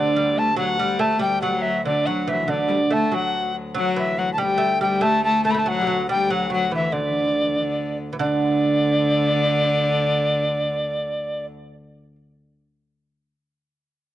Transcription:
0.00 3.12 D2 medium
0.00 0.15 D3 medium
0.00 0.37 D3 medium
0.00 0.40 D5 loud
0.16 0.56 G3 medium
0.35 0.56 A3 loud
0.35 0.57 A5 loud
0.56 0.76 F#3 medium
0.56 0.77 F#3 loud
0.56 1.02 F#5 loud
0.78 1.02 G3 medium
0.78 1.01 G3 medium
0.99 1.21 A3 loud
0.99 1.22 A3 medium
0.99 1.20 A5 loud
1.19 1.42 G3 medium
1.19 1.41 G5 loud
1.41 1.86 F#3 medium
1.41 1.49 F#3 medium
1.41 1.63 F#5 medium
1.47 1.55 G3 medium
1.54 1.85 F#3 loud
1.62 1.84 E5 medium
1.85 2.07 D3 medium
1.85 2.09 D3 medium
1.85 2.07 D5 medium
2.06 2.29 F#3 medium
2.06 2.27 F#3 medium
2.06 2.30 F#5 loud
2.27 2.47 E3 medium
2.27 2.33 E3 medium
2.27 2.40 F#3 medium
2.27 2.51 E5 medium
2.39 2.47 E3 medium
2.47 2.67 D3 medium
2.47 2.92 D3 medium
2.47 2.94 D5 medium
2.68 2.78 G3 medium
2.91 3.13 A3 medium
2.91 3.15 A3 medium
2.91 3.16 A5 medium
3.12 8.19 D2 medium
3.12 3.52 F#3 medium
3.12 3.55 F#3 medium
3.12 3.56 F#5 loud
3.75 3.97 F#3 loud
3.75 4.16 F#3 loud
3.75 3.97 F#5 loud
3.96 4.41 E3 medium
3.96 4.20 E5 medium
4.18 4.28 F#3 medium
4.18 4.33 F#5 loud
4.33 4.40 A5 medium
4.38 4.61 G3 loud
4.38 4.79 G3 medium
4.38 4.81 G5 loud
4.58 4.81 A3 loud
4.81 5.03 G3 medium
4.81 5.05 G3 medium
4.81 5.04 G5 loud
5.01 5.44 A3 loud
5.01 5.24 A3 loud
5.01 5.24 A5 loud
5.24 5.44 A3 loud
5.24 5.44 A5 loud
5.44 5.53 A3 medium
5.44 5.56 A3 loud
5.44 5.52 A5 loud
5.51 5.66 A3 medium
5.51 5.60 B5 medium
5.58 5.62 A3 medium
5.58 5.70 A5 loud
5.66 5.81 F#3 medium
5.66 6.06 F#3 medium
5.66 6.09 F#5 loud
5.81 5.86 G3 medium
5.87 6.09 F#3 medium
6.09 6.30 G3 loud
6.09 6.32 G3 medium
6.09 6.32 G5 loud
6.30 6.51 F#3 medium
6.30 6.49 F#3 medium
6.30 6.52 F#5 loud
6.50 6.72 F#3 medium
6.50 6.71 F#3 medium
6.50 6.72 F#5 medium
6.72 6.92 E3 medium
6.72 6.94 E5 medium
6.92 7.94 D3 medium
6.92 7.01 D3 medium
6.92 7.98 D5 loud
7.00 7.08 E3 medium
7.07 7.13 D3 medium
7.12 7.22 E3 medium
7.20 7.28 D3 medium
7.26 7.35 E3 medium
7.34 7.43 D3 medium
7.41 7.50 E3 medium
7.48 7.57 D3 medium
7.56 7.63 E3 medium
7.62 7.97 D3 medium
8.13 8.19 E3 medium
8.19 11.50 D2 medium
8.19 12.15 D3 loud
8.19 11.45 D3 loud
8.19 11.46 D5 loud

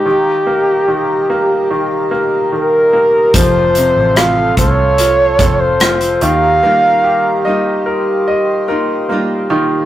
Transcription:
0.00 2.25 G4 medium
0.00 3.30 D#5 medium
0.00 3.30 A#5 medium
0.05 0.86 D#3 medium
0.05 3.31 G4 medium
0.05 9.85 F5 medium
0.47 1.28 A#3 soft
0.88 1.69 D#3 soft
1.30 2.10 A#3 medium
1.71 2.51 D#3 soft
2.11 2.92 A#3 medium
2.52 3.32 D#3 soft
2.52 3.37 A#4 medium
2.93 3.33 A#3 medium
3.34 3.92 F1 loud
3.34 4.16 F2 medium
3.34 4.16 C3 medium
3.34 4.15 F3 medium
3.34 6.18 F3 medium
3.34 4.15 A3 medium
3.34 4.17 C4 medium
3.34 4.18 F4 medium
3.34 6.19 A4 medium
3.34 4.19 C5 loud
3.34 6.19 C6 medium
3.34 kick loud
3.34 closed hi-hat medium
3.75 5.36 C3 soft
3.75 closed hi-hat medium
3.97 4.54 A1 medium
4.16 5.41 F3 soft
4.16 5.40 A3 medium
4.16 4.98 F4 medium
4.16 5.38 F4 medium
4.16 4.57 F5 medium
4.16 cross-stick medium
4.16 closed hi-hat medium
4.57 5.36 C2 medium
4.57 5.39 A4 medium
4.57 5.62 C#5 loud
4.57 kick medium
4.57 closed hi-hat medium
4.98 5.79 F4 soft
4.98 closed hi-hat medium
5.39 6.18 F1 loud
5.39 5.79 F3 soft
5.39 5.80 A3 soft
5.39 5.81 C4 soft
5.39 5.80 F4 soft
5.39 6.20 A4 medium
5.39 kick medium
5.39 closed hi-hat medium
5.60 6.24 C5 medium
5.80 6.22 F3 medium
5.80 6.22 A3 medium
5.80 6.22 C4 medium
5.80 6.20 F4 medium
5.80 cross-stick loud
5.80 closed hi-hat medium
6.01 closed hi-hat soft
6.21 6.60 D#2 medium
6.21 9.47 D#3 medium
6.21 6.63 A#3 soft
6.21 6.63 D#4 soft
6.21 6.63 F4 medium
6.21 9.85 G4 medium
6.21 9.85 D#5 medium
6.21 7.87 F5 loud
6.21 7.84 A#5 medium
6.21 closed hi-hat soft
6.63 7.45 D#3 medium
6.63 7.43 G3 medium
6.63 8.23 A#3 medium
6.63 7.45 A#3 medium
6.63 7.46 D#4 medium
6.63 7.47 F4 medium
7.04 8.64 G4 soft
7.45 8.68 G3 medium
7.45 8.69 A#3 medium
7.45 8.68 D#4 medium
7.45 8.67 F4 medium
7.45 8.26 D#5 medium
7.86 8.67 A#4 medium
7.86 9.85 C6 medium
8.28 9.85 D#5 medium
8.68 9.10 A#3 soft
8.68 9.10 D#4 medium
8.68 9.09 F4 medium
8.68 9.85 A#4 medium
9.09 9.51 G3 medium
9.09 9.85 A#3 soft
9.09 9.51 A#3 medium
9.09 9.50 D#4 medium
9.09 9.48 F4 medium
9.50 9.85 D#3 medium
9.50 9.85 A#3 soft
9.50 9.85 D#4 medium
9.50 9.85 F4 medium

